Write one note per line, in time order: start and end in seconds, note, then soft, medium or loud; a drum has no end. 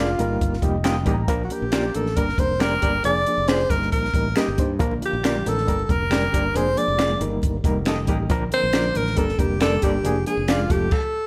0.00 0.14 F1 medium
0.00 0.10 G#3 medium
0.00 0.10 D4 medium
0.00 0.10 F4 medium
0.00 0.85 F4 medium
0.00 0.11 A#4 medium
0.19 0.38 G1 medium
0.19 0.54 G3 medium
0.19 0.54 A#3 medium
0.19 0.55 D#4 medium
0.19 0.55 A#4 medium
0.19 closed hi-hat medium
0.41 0.60 G1 medium
0.41 kick medium
0.41 closed hi-hat medium
0.54 snare soft
0.62 1.07 F1 medium
0.62 0.75 G3 medium
0.62 0.76 A#3 medium
0.62 0.76 D#4 medium
0.62 0.76 G4 medium
0.62 0.83 D#5 medium
0.62 kick medium
0.62 closed hi-hat medium
0.84 0.97 G3 medium
0.84 0.98 A#3 medium
0.84 0.98 D#4 medium
0.84 0.98 F4 medium
0.84 0.95 G4 medium
0.84 0.95 A#4 medium
0.84 0.96 D#5 medium
0.84 1.12 G5 medium
0.84 finger snap medium
0.84 snare medium
0.84 closed hi-hat medium
1.05 1.26 A1 medium
1.05 1.19 G3 medium
1.05 1.19 A#3 medium
1.05 1.20 D#4 medium
1.05 1.15 G4 medium
1.05 1.20 G4 medium
1.05 1.15 A#4 medium
1.05 1.15 D#5 medium
1.05 kick medium
1.05 closed hi-hat medium
1.14 1.28 A#5 medium
1.28 1.48 A#1 medium
1.28 1.41 F3 loud
1.28 1.42 A#3 loud
1.28 1.42 D4 loud
1.28 1.42 A#4 loud
1.28 kick loud
1.28 closed hi-hat medium
1.44 1.54 F#4 medium
1.50 1.63 F3 medium
1.50 1.64 A#3 medium
1.50 1.64 D4 medium
1.50 1.97 G4 medium
1.50 1.64 A#4 medium
1.50 closed hi-hat medium
1.62 1.91 A#1 medium
1.72 1.85 F3 medium
1.72 1.86 A#3 medium
1.72 1.86 D4 medium
1.72 1.83 F4 medium
1.72 1.86 G4 medium
1.72 1.83 A#4 medium
1.72 1.84 D5 medium
1.72 finger snap medium
1.72 snare loud
1.72 closed hi-hat medium
1.94 2.14 A1 medium
1.94 2.07 F3 medium
1.94 2.08 A#3 medium
1.94 2.08 D4 medium
1.94 2.18 A4 medium
1.94 2.08 A#4 medium
1.94 closed hi-hat medium
2.06 snare soft
2.17 2.36 G1 medium
2.17 2.30 G3 medium
2.17 2.30 A#3 medium
2.17 2.30 D4 medium
2.17 2.41 A#4 medium
2.17 2.30 A#4 medium
2.17 kick medium
2.17 closed hi-hat medium
2.29 snare soft
2.38 2.76 F1 medium
2.38 2.52 G3 medium
2.38 2.52 A#3 medium
2.38 2.52 D4 medium
2.38 2.52 A#4 medium
2.38 2.63 C5 medium
2.38 kick medium
2.38 closed hi-hat medium
2.60 2.73 G3 medium
2.60 2.73 A#3 medium
2.60 2.74 D4 medium
2.60 2.71 G4 medium
2.60 2.71 A#4 medium
2.60 3.04 A#4 loud
2.60 2.74 A#4 medium
2.60 2.71 D5 medium
2.60 finger snap medium
2.60 snare loud
2.60 closed hi-hat medium
2.82 3.02 G1 medium
2.82 2.95 G3 medium
2.82 2.96 A#3 medium
2.82 2.96 D4 medium
2.82 2.91 G4 medium
2.82 2.91 A#4 medium
2.82 2.96 A#4 medium
2.82 2.91 D5 medium
2.82 kick medium
2.82 closed hi-hat medium
3.04 3.24 F1 medium
3.04 3.17 F3 medium
3.04 3.17 A#3 medium
3.04 3.18 D4 medium
3.04 3.18 G#4 loud
3.04 3.50 D5 medium
3.04 closed hi-hat medium
3.26 3.39 F3 medium
3.26 3.40 A#3 medium
3.26 3.40 D4 medium
3.26 3.40 G#4 medium
3.26 closed hi-hat medium
3.38 3.66 F1 medium
3.48 3.61 F3 medium
3.48 3.62 A#3 medium
3.48 3.62 D4 medium
3.48 3.59 F4 medium
3.48 3.59 G#4 medium
3.48 3.62 G#4 medium
3.48 3.71 C5 medium
3.48 3.59 D5 medium
3.48 finger snap medium
3.48 snare loud
3.48 closed hi-hat medium
3.70 3.89 G1 medium
3.70 4.05 G3 medium
3.70 4.06 A#3 medium
3.70 4.06 D#4 medium
3.70 3.91 A#4 medium
3.70 4.07 A#4 medium
3.70 kick medium
3.70 snare soft
3.70 closed hi-hat medium
3.82 snare soft
3.92 4.12 A#1 medium
3.92 4.38 A#4 medium
3.92 kick medium
3.92 closed hi-hat medium
4.05 snare soft
4.14 4.33 A1 medium
4.14 4.27 G3 medium
4.14 4.27 A#3 medium
4.14 4.27 D#4 medium
4.14 4.28 A#4 medium
4.14 kick medium
4.14 closed hi-hat medium
4.36 4.49 G3 medium
4.36 4.49 A#3 medium
4.36 4.49 D#4 medium
4.36 4.47 G4 medium
4.36 4.69 G4 medium
4.36 4.47 A#4 medium
4.36 4.50 A#4 medium
4.36 4.47 D#5 medium
4.36 finger snap medium
4.36 snare medium
4.36 closed hi-hat medium
4.48 4.57 G1 medium
4.57 4.77 G2 medium
4.57 4.71 G3 medium
4.57 4.71 A#3 medium
4.57 4.71 D#4 medium
4.57 4.72 C5 medium
4.57 kick medium
4.57 closed hi-hat medium
4.79 4.99 A#1 medium
4.79 6.54 D3 medium
4.79 4.92 F3 loud
4.79 5.67 F3 medium
4.79 4.93 A#3 loud
4.79 7.19 A#3 medium
4.79 4.93 D4 medium
4.79 7.19 D4 medium
4.79 4.93 A#4 loud
4.79 kick loud
4.79 closed hi-hat medium
4.79 muted conga soft
4.79 low conga medium
4.91 muted conga soft
5.01 5.14 F3 medium
5.01 5.15 A#3 medium
5.01 5.15 D4 medium
5.01 5.15 F4 medium
5.01 closed hi-hat medium
5.05 5.50 G4 medium
5.13 5.42 A#1 medium
5.23 5.36 F3 medium
5.23 5.37 A#3 medium
5.23 5.37 D4 medium
5.23 5.34 F4 medium
5.23 5.35 A#4 medium
5.23 5.37 A#4 medium
5.23 5.35 D5 medium
5.23 finger snap medium
5.23 snare loud
5.23 closed hi-hat medium
5.35 muted conga soft
5.35 high conga medium
5.45 5.65 A1 medium
5.45 5.58 F3 medium
5.45 5.58 A#3 medium
5.45 5.59 D4 medium
5.45 5.84 A4 medium
5.45 5.59 A#4 medium
5.45 snare soft
5.45 closed hi-hat medium
5.45 low conga medium
5.56 snare soft
5.56 high conga soft
5.67 5.87 G1 medium
5.67 5.80 G3 medium
5.67 6.55 G3 medium
5.67 5.80 A#3 medium
5.67 5.81 D4 medium
5.67 5.81 A#4 medium
5.67 kick medium
5.67 closed hi-hat medium
5.67 muted conga soft
5.79 muted conga soft
5.84 5.92 A4 medium
5.89 6.27 F1 medium
5.89 6.02 G3 medium
5.89 6.02 A#3 medium
5.89 6.03 D4 medium
5.89 6.58 A#4 medium
5.89 6.03 A#4 medium
5.89 kick medium
5.89 closed hi-hat medium
5.89 high conga medium
6.11 6.24 G3 medium
6.11 6.24 A#3 medium
6.11 6.25 D4 medium
6.11 6.22 G4 medium
6.11 6.22 A#4 medium
6.11 6.25 A#4 medium
6.11 6.22 D5 medium
6.11 finger snap medium
6.11 snare loud
6.11 closed hi-hat medium
6.11 muted conga soft
6.11 high conga medium
6.22 muted conga soft
6.32 6.53 G1 medium
6.32 6.46 G3 medium
6.32 6.46 A#3 medium
6.32 6.47 D4 medium
6.32 6.41 G4 medium
6.32 6.42 A#4 medium
6.32 6.47 A#4 medium
6.32 6.42 D5 medium
6.32 kick medium
6.32 closed hi-hat medium
6.32 low conga medium
6.54 6.74 F1 loud
6.54 6.68 F3 medium
6.54 7.21 F3 medium
6.54 7.21 G#3 medium
6.54 6.68 A#3 medium
6.54 6.68 D4 medium
6.54 6.69 G#4 loud
6.54 6.80 C5 medium
6.54 closed hi-hat medium
6.54 low conga medium
6.66 muted conga soft
6.76 6.89 F3 medium
6.76 6.90 A#3 medium
6.76 6.90 D4 medium
6.76 6.90 G#4 medium
6.76 7.21 D5 loud
6.76 closed hi-hat medium
6.88 7.16 F1 medium
6.98 7.11 F3 medium
6.98 7.11 A#3 medium
6.98 7.12 D4 medium
6.98 7.09 F4 medium
6.98 7.10 G#4 medium
6.98 7.12 G#4 medium
6.98 7.10 D5 medium
6.98 finger snap medium
6.98 snare loud
6.98 closed hi-hat medium
7.10 muted conga soft
7.10 high conga medium
7.20 7.40 G1 medium
7.20 8.30 D#3 medium
7.20 7.55 G3 medium
7.20 8.30 G3 medium
7.20 7.56 A#3 medium
7.20 10.68 A#3 medium
7.20 7.56 D#4 medium
7.20 8.30 D#4 medium
7.20 7.56 A#4 medium
7.20 closed hi-hat medium
7.20 low conga medium
7.31 high conga soft
7.42 7.62 G1 medium
7.42 kick medium
7.42 closed hi-hat medium
7.42 muted conga soft
7.64 8.09 F1 medium
7.64 7.77 G3 medium
7.64 7.77 A#3 medium
7.64 7.78 D#4 medium
7.64 7.78 A#4 medium
7.64 kick medium
7.64 closed hi-hat medium
7.64 high conga medium
7.85 7.99 G3 medium
7.85 8.00 A#3 medium
7.85 8.00 D#4 medium
7.85 7.97 G4 medium
7.85 8.00 A4 loud
7.85 7.97 A#4 medium
7.85 7.97 D#5 loud
7.85 finger snap medium
7.85 snare medium
7.85 closed hi-hat medium
7.85 muted conga soft
7.85 high conga medium
8.07 8.27 A1 medium
8.07 8.21 G3 medium
8.07 8.21 A#3 medium
8.07 8.21 D#4 medium
8.07 8.17 G4 medium
8.07 8.22 G4 medium
8.07 8.17 A#4 medium
8.07 8.17 D#5 medium
8.07 kick medium
8.07 closed hi-hat medium
8.07 low conga medium
8.30 8.49 A#1 medium
8.30 10.04 D3 medium
8.30 8.43 F3 loud
8.30 9.18 F3 medium
8.30 8.43 A#3 medium
8.30 8.43 D4 loud
8.30 10.69 D4 medium
8.30 8.44 A#4 loud
8.30 kick loud
8.30 closed hi-hat medium
8.30 low conga medium
8.51 8.64 F3 medium
8.51 8.65 A#3 medium
8.51 8.65 D4 medium
8.51 8.65 A#4 medium
8.51 8.98 C5 loud
8.51 closed hi-hat medium
8.63 8.92 A#1 medium
8.73 8.86 F3 medium
8.73 8.87 A#3 medium
8.73 8.87 D4 medium
8.73 8.84 F4 medium
8.73 8.85 A#4 medium
8.73 8.87 A#4 medium
8.73 8.85 D5 medium
8.73 finger snap loud
8.73 snare loud
8.73 closed hi-hat medium
8.73 muted conga soft
8.84 muted conga soft
8.84 high conga medium
8.95 9.15 A1 medium
8.95 9.08 F3 medium
8.95 9.08 A#3 medium
8.95 9.09 D4 medium
8.95 9.19 A#4 medium
8.95 9.09 A#4 medium
8.95 closed hi-hat medium
8.95 low conga medium
9.06 snare soft
9.06 high conga soft
9.17 9.36 G1 medium
9.17 9.30 G3 medium
9.17 10.04 G3 medium
9.17 9.30 A#3 medium
9.17 9.30 D4 medium
9.17 9.40 A4 medium
9.17 9.31 A#4 loud
9.17 kick medium
9.17 closed hi-hat medium
9.17 muted conga soft
9.29 snare soft
9.38 9.77 F1 medium
9.38 9.52 G3 medium
9.38 9.52 A#3 medium
9.38 9.52 D4 medium
9.38 9.61 G4 medium
9.38 9.53 A#4 medium
9.38 kick medium
9.38 closed hi-hat medium
9.38 high conga medium
9.60 9.73 G3 medium
9.60 9.74 A#3 medium
9.60 9.74 D4 medium
9.60 9.72 G4 medium
9.60 9.85 A4 medium
9.60 9.72 A#4 medium
9.60 9.74 A#4 medium
9.60 9.72 D5 medium
9.60 finger snap medium
9.60 snare loud
9.60 closed hi-hat medium
9.60 muted conga soft
9.60 high conga medium
9.82 10.02 G1 medium
9.82 9.95 G3 medium
9.82 9.96 A#3 medium
9.82 9.96 D4 medium
9.82 10.26 G4 medium
9.82 9.91 G4 medium
9.82 9.96 A4 medium
9.82 9.92 A#4 medium
9.82 9.92 D5 medium
9.82 kick medium
9.82 closed hi-hat medium
9.82 low conga medium
10.04 10.23 F1 medium
10.04 10.17 F3 medium
10.04 10.92 F3 medium
10.04 10.70 G#3 medium
10.04 10.18 A#3 medium
10.04 10.18 D4 medium
10.04 10.18 G#4 loud
10.04 closed hi-hat medium
10.04 low conga medium
10.16 muted conga soft
10.26 10.39 F3 medium
10.26 10.39 A#3 medium
10.26 10.40 D4 medium
10.26 10.51 G#4 medium
10.26 10.40 G#4 medium
10.26 closed hi-hat medium
10.37 10.66 F1 medium
10.48 10.61 F3 medium
10.48 10.61 A#3 medium
10.48 10.61 D4 medium
10.48 10.59 F4 medium
10.48 10.62 F4 medium
10.48 10.73 F4 medium
10.48 10.59 G#4 medium
10.48 10.60 D5 medium
10.48 finger snap medium
10.48 snare loud
10.48 closed hi-hat medium
10.59 muted conga soft
10.59 high conga medium
10.69 10.89 F1 medium
10.69 10.87 F3 medium
10.69 10.88 A3 medium
10.69 10.92 A3 medium
10.69 10.92 C4 medium
10.69 10.88 C4 medium
10.69 10.92 F4 medium
10.69 10.94 G4 medium
10.69 10.88 A4 medium
10.69 kick medium
10.69 closed hi-hat medium
10.69 low conga medium
10.80 high conga soft
10.91 11.27 A4 medium
10.91 kick loud
10.91 crash medium